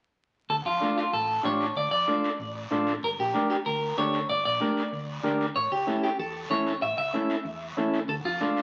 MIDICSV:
0, 0, Header, 1, 5, 480
1, 0, Start_track
1, 0, Key_signature, -1, "minor"
1, 0, Tempo, 316790
1, 744, Time_signature, 4, 2, 24, 8
1, 13061, End_track
2, 0, Start_track
2, 0, Title_t, "Clean electric guitar"
2, 0, Program_c, 0, 27
2, 756, Note_on_c, 0, 69, 88
2, 832, Note_off_c, 0, 69, 0
2, 1000, Note_on_c, 0, 65, 71
2, 1438, Note_off_c, 0, 65, 0
2, 1480, Note_on_c, 0, 65, 60
2, 1713, Note_off_c, 0, 65, 0
2, 1719, Note_on_c, 0, 69, 78
2, 2197, Note_off_c, 0, 69, 0
2, 2203, Note_on_c, 0, 73, 81
2, 2640, Note_off_c, 0, 73, 0
2, 2681, Note_on_c, 0, 74, 85
2, 2880, Note_off_c, 0, 74, 0
2, 2898, Note_on_c, 0, 74, 88
2, 4280, Note_off_c, 0, 74, 0
2, 4608, Note_on_c, 0, 70, 91
2, 4684, Note_off_c, 0, 70, 0
2, 4846, Note_on_c, 0, 67, 76
2, 5291, Note_off_c, 0, 67, 0
2, 5309, Note_on_c, 0, 67, 67
2, 5385, Note_off_c, 0, 67, 0
2, 5545, Note_on_c, 0, 70, 78
2, 5990, Note_off_c, 0, 70, 0
2, 6030, Note_on_c, 0, 73, 82
2, 6502, Note_off_c, 0, 73, 0
2, 6508, Note_on_c, 0, 74, 94
2, 6729, Note_off_c, 0, 74, 0
2, 6748, Note_on_c, 0, 74, 90
2, 8125, Note_off_c, 0, 74, 0
2, 8419, Note_on_c, 0, 73, 92
2, 8644, Note_off_c, 0, 73, 0
2, 8667, Note_on_c, 0, 67, 81
2, 9112, Note_off_c, 0, 67, 0
2, 9144, Note_on_c, 0, 67, 70
2, 9367, Note_off_c, 0, 67, 0
2, 9387, Note_on_c, 0, 69, 80
2, 9859, Note_on_c, 0, 73, 77
2, 9879, Note_off_c, 0, 69, 0
2, 10330, Note_off_c, 0, 73, 0
2, 10336, Note_on_c, 0, 76, 101
2, 10557, Note_off_c, 0, 76, 0
2, 10575, Note_on_c, 0, 76, 96
2, 11960, Note_off_c, 0, 76, 0
2, 12258, Note_on_c, 0, 69, 99
2, 12334, Note_off_c, 0, 69, 0
2, 12504, Note_on_c, 0, 65, 87
2, 12951, Note_off_c, 0, 65, 0
2, 13061, End_track
3, 0, Start_track
3, 0, Title_t, "Transistor combo organ"
3, 0, Program_c, 1, 18
3, 1215, Note_on_c, 1, 62, 63
3, 1224, Note_on_c, 1, 65, 56
3, 1225, Note_on_c, 1, 69, 66
3, 1555, Note_off_c, 1, 62, 0
3, 1559, Note_off_c, 1, 65, 0
3, 1560, Note_off_c, 1, 69, 0
3, 2169, Note_on_c, 1, 62, 64
3, 2172, Note_on_c, 1, 65, 60
3, 2178, Note_on_c, 1, 67, 72
3, 2512, Note_off_c, 1, 62, 0
3, 2513, Note_off_c, 1, 65, 0
3, 2516, Note_off_c, 1, 67, 0
3, 3143, Note_on_c, 1, 62, 62
3, 3144, Note_on_c, 1, 65, 61
3, 3152, Note_on_c, 1, 69, 71
3, 3479, Note_off_c, 1, 62, 0
3, 3479, Note_off_c, 1, 65, 0
3, 3483, Note_off_c, 1, 69, 0
3, 4102, Note_on_c, 1, 62, 83
3, 4108, Note_on_c, 1, 65, 72
3, 4114, Note_on_c, 1, 69, 91
3, 4438, Note_off_c, 1, 62, 0
3, 4441, Note_off_c, 1, 65, 0
3, 4444, Note_off_c, 1, 69, 0
3, 5060, Note_on_c, 1, 62, 63
3, 5065, Note_on_c, 1, 67, 57
3, 5074, Note_on_c, 1, 70, 71
3, 5397, Note_off_c, 1, 62, 0
3, 5400, Note_off_c, 1, 67, 0
3, 5404, Note_off_c, 1, 70, 0
3, 6022, Note_on_c, 1, 62, 69
3, 6026, Note_on_c, 1, 67, 60
3, 6030, Note_on_c, 1, 69, 73
3, 6358, Note_off_c, 1, 62, 0
3, 6360, Note_off_c, 1, 67, 0
3, 6362, Note_off_c, 1, 69, 0
3, 6970, Note_on_c, 1, 62, 66
3, 6980, Note_on_c, 1, 67, 56
3, 6983, Note_on_c, 1, 70, 65
3, 7312, Note_off_c, 1, 62, 0
3, 7318, Note_off_c, 1, 67, 0
3, 7319, Note_off_c, 1, 70, 0
3, 7929, Note_on_c, 1, 62, 78
3, 7934, Note_on_c, 1, 67, 69
3, 7939, Note_on_c, 1, 70, 85
3, 8272, Note_off_c, 1, 62, 0
3, 8275, Note_off_c, 1, 67, 0
3, 8277, Note_off_c, 1, 70, 0
3, 8888, Note_on_c, 1, 61, 59
3, 8893, Note_on_c, 1, 64, 55
3, 8902, Note_on_c, 1, 69, 70
3, 9232, Note_off_c, 1, 61, 0
3, 9234, Note_off_c, 1, 64, 0
3, 9239, Note_off_c, 1, 69, 0
3, 9847, Note_on_c, 1, 61, 72
3, 9851, Note_on_c, 1, 64, 61
3, 9861, Note_on_c, 1, 69, 71
3, 10191, Note_off_c, 1, 61, 0
3, 10193, Note_off_c, 1, 64, 0
3, 10198, Note_off_c, 1, 69, 0
3, 10810, Note_on_c, 1, 61, 60
3, 10816, Note_on_c, 1, 64, 57
3, 10821, Note_on_c, 1, 69, 72
3, 11153, Note_off_c, 1, 61, 0
3, 11156, Note_off_c, 1, 64, 0
3, 11159, Note_off_c, 1, 69, 0
3, 11771, Note_on_c, 1, 61, 83
3, 11774, Note_on_c, 1, 64, 76
3, 11780, Note_on_c, 1, 69, 89
3, 12114, Note_off_c, 1, 61, 0
3, 12115, Note_off_c, 1, 64, 0
3, 12119, Note_off_c, 1, 69, 0
3, 12736, Note_on_c, 1, 62, 62
3, 12746, Note_on_c, 1, 65, 55
3, 12751, Note_on_c, 1, 69, 70
3, 13061, Note_off_c, 1, 62, 0
3, 13061, Note_off_c, 1, 65, 0
3, 13061, Note_off_c, 1, 69, 0
3, 13061, End_track
4, 0, Start_track
4, 0, Title_t, "Fingered electric bass"
4, 0, Program_c, 2, 33
4, 749, Note_on_c, 2, 38, 93
4, 939, Note_off_c, 2, 38, 0
4, 989, Note_on_c, 2, 41, 83
4, 1179, Note_off_c, 2, 41, 0
4, 1713, Note_on_c, 2, 33, 81
4, 2093, Note_off_c, 2, 33, 0
4, 2184, Note_on_c, 2, 33, 68
4, 2567, Note_off_c, 2, 33, 0
4, 2666, Note_on_c, 2, 38, 96
4, 2857, Note_off_c, 2, 38, 0
4, 2903, Note_on_c, 2, 41, 80
4, 3095, Note_off_c, 2, 41, 0
4, 3626, Note_on_c, 2, 33, 84
4, 4009, Note_off_c, 2, 33, 0
4, 4101, Note_on_c, 2, 33, 75
4, 4486, Note_off_c, 2, 33, 0
4, 4587, Note_on_c, 2, 31, 97
4, 4777, Note_off_c, 2, 31, 0
4, 4830, Note_on_c, 2, 34, 81
4, 5019, Note_off_c, 2, 34, 0
4, 5548, Note_on_c, 2, 38, 80
4, 5930, Note_off_c, 2, 38, 0
4, 6029, Note_on_c, 2, 38, 83
4, 6410, Note_off_c, 2, 38, 0
4, 6508, Note_on_c, 2, 31, 106
4, 6698, Note_off_c, 2, 31, 0
4, 6742, Note_on_c, 2, 34, 81
4, 6934, Note_off_c, 2, 34, 0
4, 7461, Note_on_c, 2, 38, 81
4, 7846, Note_off_c, 2, 38, 0
4, 7939, Note_on_c, 2, 38, 73
4, 8325, Note_off_c, 2, 38, 0
4, 8418, Note_on_c, 2, 33, 97
4, 8612, Note_off_c, 2, 33, 0
4, 8655, Note_on_c, 2, 37, 80
4, 8850, Note_off_c, 2, 37, 0
4, 9379, Note_on_c, 2, 40, 81
4, 9765, Note_off_c, 2, 40, 0
4, 9848, Note_on_c, 2, 40, 78
4, 10239, Note_off_c, 2, 40, 0
4, 10332, Note_on_c, 2, 33, 90
4, 10528, Note_off_c, 2, 33, 0
4, 10573, Note_on_c, 2, 37, 85
4, 10769, Note_off_c, 2, 37, 0
4, 11285, Note_on_c, 2, 40, 84
4, 11677, Note_off_c, 2, 40, 0
4, 11773, Note_on_c, 2, 40, 70
4, 12162, Note_off_c, 2, 40, 0
4, 12248, Note_on_c, 2, 38, 104
4, 12447, Note_off_c, 2, 38, 0
4, 12491, Note_on_c, 2, 41, 82
4, 12689, Note_off_c, 2, 41, 0
4, 13061, End_track
5, 0, Start_track
5, 0, Title_t, "Drums"
5, 762, Note_on_c, 9, 74, 59
5, 765, Note_on_c, 9, 63, 30
5, 913, Note_off_c, 9, 74, 0
5, 916, Note_off_c, 9, 63, 0
5, 1241, Note_on_c, 9, 73, 63
5, 1243, Note_on_c, 9, 63, 68
5, 1392, Note_off_c, 9, 73, 0
5, 1395, Note_off_c, 9, 63, 0
5, 1479, Note_on_c, 9, 73, 64
5, 1631, Note_off_c, 9, 73, 0
5, 1712, Note_on_c, 9, 74, 68
5, 1724, Note_on_c, 9, 63, 31
5, 1864, Note_off_c, 9, 74, 0
5, 1875, Note_off_c, 9, 63, 0
5, 2183, Note_on_c, 9, 73, 70
5, 2197, Note_on_c, 9, 63, 69
5, 2335, Note_off_c, 9, 73, 0
5, 2348, Note_off_c, 9, 63, 0
5, 2434, Note_on_c, 9, 73, 62
5, 2586, Note_off_c, 9, 73, 0
5, 2660, Note_on_c, 9, 74, 63
5, 2679, Note_on_c, 9, 63, 29
5, 2811, Note_off_c, 9, 74, 0
5, 2830, Note_off_c, 9, 63, 0
5, 3147, Note_on_c, 9, 73, 59
5, 3157, Note_on_c, 9, 63, 67
5, 3299, Note_off_c, 9, 73, 0
5, 3309, Note_off_c, 9, 63, 0
5, 3397, Note_on_c, 9, 73, 61
5, 3548, Note_off_c, 9, 73, 0
5, 3637, Note_on_c, 9, 74, 62
5, 3639, Note_on_c, 9, 63, 32
5, 3788, Note_off_c, 9, 74, 0
5, 3790, Note_off_c, 9, 63, 0
5, 4117, Note_on_c, 9, 63, 69
5, 4121, Note_on_c, 9, 73, 66
5, 4269, Note_off_c, 9, 63, 0
5, 4272, Note_off_c, 9, 73, 0
5, 4348, Note_on_c, 9, 73, 66
5, 4500, Note_off_c, 9, 73, 0
5, 4588, Note_on_c, 9, 74, 56
5, 4599, Note_on_c, 9, 63, 29
5, 4739, Note_off_c, 9, 74, 0
5, 4751, Note_off_c, 9, 63, 0
5, 5066, Note_on_c, 9, 73, 57
5, 5073, Note_on_c, 9, 63, 75
5, 5217, Note_off_c, 9, 73, 0
5, 5225, Note_off_c, 9, 63, 0
5, 5301, Note_on_c, 9, 73, 63
5, 5452, Note_off_c, 9, 73, 0
5, 5545, Note_on_c, 9, 74, 65
5, 5549, Note_on_c, 9, 63, 33
5, 5697, Note_off_c, 9, 74, 0
5, 5701, Note_off_c, 9, 63, 0
5, 6027, Note_on_c, 9, 63, 68
5, 6030, Note_on_c, 9, 73, 69
5, 6179, Note_off_c, 9, 63, 0
5, 6181, Note_off_c, 9, 73, 0
5, 6268, Note_on_c, 9, 73, 59
5, 6419, Note_off_c, 9, 73, 0
5, 6504, Note_on_c, 9, 74, 62
5, 6512, Note_on_c, 9, 63, 27
5, 6655, Note_off_c, 9, 74, 0
5, 6663, Note_off_c, 9, 63, 0
5, 6988, Note_on_c, 9, 63, 75
5, 6990, Note_on_c, 9, 73, 56
5, 7139, Note_off_c, 9, 63, 0
5, 7142, Note_off_c, 9, 73, 0
5, 7232, Note_on_c, 9, 73, 63
5, 7383, Note_off_c, 9, 73, 0
5, 7466, Note_on_c, 9, 63, 33
5, 7479, Note_on_c, 9, 74, 59
5, 7618, Note_off_c, 9, 63, 0
5, 7631, Note_off_c, 9, 74, 0
5, 7942, Note_on_c, 9, 63, 64
5, 7964, Note_on_c, 9, 73, 73
5, 8093, Note_off_c, 9, 63, 0
5, 8116, Note_off_c, 9, 73, 0
5, 8197, Note_on_c, 9, 73, 61
5, 8349, Note_off_c, 9, 73, 0
5, 8427, Note_on_c, 9, 63, 27
5, 8440, Note_on_c, 9, 74, 61
5, 8578, Note_off_c, 9, 63, 0
5, 8592, Note_off_c, 9, 74, 0
5, 8903, Note_on_c, 9, 63, 75
5, 8913, Note_on_c, 9, 73, 58
5, 9055, Note_off_c, 9, 63, 0
5, 9064, Note_off_c, 9, 73, 0
5, 9150, Note_on_c, 9, 73, 64
5, 9302, Note_off_c, 9, 73, 0
5, 9388, Note_on_c, 9, 63, 33
5, 9391, Note_on_c, 9, 74, 67
5, 9540, Note_off_c, 9, 63, 0
5, 9542, Note_off_c, 9, 74, 0
5, 9858, Note_on_c, 9, 73, 74
5, 9868, Note_on_c, 9, 63, 71
5, 10010, Note_off_c, 9, 73, 0
5, 10020, Note_off_c, 9, 63, 0
5, 10100, Note_on_c, 9, 73, 62
5, 10252, Note_off_c, 9, 73, 0
5, 10342, Note_on_c, 9, 74, 65
5, 10346, Note_on_c, 9, 63, 30
5, 10493, Note_off_c, 9, 74, 0
5, 10498, Note_off_c, 9, 63, 0
5, 10820, Note_on_c, 9, 73, 67
5, 10830, Note_on_c, 9, 63, 78
5, 10972, Note_off_c, 9, 73, 0
5, 10982, Note_off_c, 9, 63, 0
5, 11058, Note_on_c, 9, 73, 61
5, 11209, Note_off_c, 9, 73, 0
5, 11298, Note_on_c, 9, 74, 63
5, 11315, Note_on_c, 9, 63, 33
5, 11450, Note_off_c, 9, 74, 0
5, 11467, Note_off_c, 9, 63, 0
5, 11779, Note_on_c, 9, 73, 70
5, 11788, Note_on_c, 9, 63, 68
5, 11931, Note_off_c, 9, 73, 0
5, 11939, Note_off_c, 9, 63, 0
5, 12024, Note_on_c, 9, 73, 66
5, 12175, Note_off_c, 9, 73, 0
5, 12270, Note_on_c, 9, 63, 30
5, 12270, Note_on_c, 9, 74, 62
5, 12421, Note_off_c, 9, 74, 0
5, 12422, Note_off_c, 9, 63, 0
5, 12744, Note_on_c, 9, 73, 61
5, 12745, Note_on_c, 9, 63, 65
5, 12896, Note_off_c, 9, 63, 0
5, 12896, Note_off_c, 9, 73, 0
5, 12981, Note_on_c, 9, 73, 64
5, 13061, Note_off_c, 9, 73, 0
5, 13061, End_track
0, 0, End_of_file